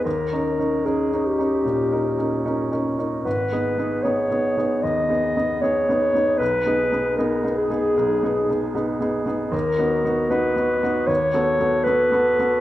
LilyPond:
<<
  \new Staff \with { instrumentName = "Clarinet" } { \time 4/4 \key dis \phrygian \tempo 4 = 76 ais'4 gis'8 g'2 r8 | b'4 cis''4 dis''4 cis''4 | b'4 ais'8 gis'2 r8 | \key b \major ais'4 b'4 cis''4 b'4 | }
  \new Staff \with { instrumentName = "Grand piano" } { \time 4/4 \key dis \phrygian \tuplet 3/2 { dis,8 <cis' dis' ais'>8 <cis' dis' ais'>8 <cis' dis' ais'>8 <cis' dis' ais'>8 <cis' dis' ais'>8 ais,8 <cis' dis' ais'>8 <cis' dis' ais'>8 <cis' dis' ais'>8 <cis' dis' ais'>8 <cis' dis' ais'>8 } | \tuplet 3/2 { gis,,8 <b dis' gis'>8 <b dis' gis'>8 <b dis' gis'>8 <b dis' gis'>8 <b dis' gis'>8 dis,8 <b dis' gis'>8 <b dis' gis'>8 <b dis' gis'>8 <b dis' gis'>8 <b dis' gis'>8 } | \tuplet 3/2 { b,,8 <b dis' gis'>8 <b dis' gis'>8 <b dis' gis'>8 <b dis' gis'>8 <b dis' gis'>8 b,,8 <b dis' gis'>8 <b dis' gis'>8 <b dis' gis'>8 <b dis' gis'>8 <b dis' gis'>8 } | \key b \major \tuplet 3/2 { dis,8 <b dis' fis'>8 <b dis' fis'>8 <b dis' fis'>8 <b dis' fis'>8 <b dis' fis'>8 dis,8 <b fis' a'>8 <b fis' a'>8 <b fis' a'>8 <b fis' a'>8 <b fis' a'>8 } | }
>>